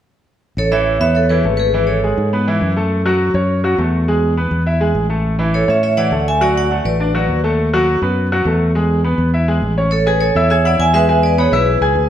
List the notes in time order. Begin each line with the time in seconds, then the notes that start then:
0.57 A1 A4 C#5
0.72 E3 E4 C#5 E5
1.00 E2 B3 B4 C#5 E5
1.15 A4 C#5
1.29 E3 E4 G#4 B4
1.44 G#1 A3 A4
1.57 G#4 B4
1.74 E3 E4
1.87 A4 C#5
2.04 G#3 G#4
2.17 G#2
2.33 B3 B4
2.47 E3 E4
2.61 F#2
2.76 A3 A4
3.06 F#3 F#4
3.34 F#2 C#4 C#5
3.64 F#3 F#4
3.78 E2 A3 A4
4.08 G#3 G#4
4.37 B3 B4
4.51 E2
4.66 E4 E5
4.80 G#3 G#4
4.95 A1
5.10 A3 A4
5.39 E3 E4
5.54 A4 C#5
5.68 A2 C#4 C#5 E5
5.83 C#5 E5
5.97 E3 E4 D5 F#5
6.11 D2 A3 A4
6.28 E5 G#5
6.41 F#3 F#4 D5 F#5
6.57 D5 F#5
6.71 A3 A4
6.85 A1 B4 D5
7.00 D4 D5
7.15 F#3 F#4
7.28 D#2
7.44 A3 A4
7.73 F#3 F#4
8.02 F#2 B3 B4
8.32 F#3 F#4
8.45 E2 A3 A4
8.75 G#3 G#4
9.04 B3 B4
9.18 E2
9.34 E4 E5
9.48 G#3 G#4
9.62 A1
9.77 C#4 C#5
9.91 A4 C#5
10.06 G#4 B4 G#5 G#6
10.21 A4 C#5
10.35 E2 E4 E5 E6
10.50 G#4 C#5 E5 G#5 G#6
10.65 E4 D5 E5 F#5 E6
10.79 E2 E5 G#5
10.93 G#3 G#4 B4 E5 G#5
11.08 G#3 G#4 G#5
11.23 B4 D5
11.38 B3 G#4 B4 C#5 B5
11.52 B1 E4 G#4 B4 E5 E6
11.81 C#2 G#4 G#5 G#6
11.95 D2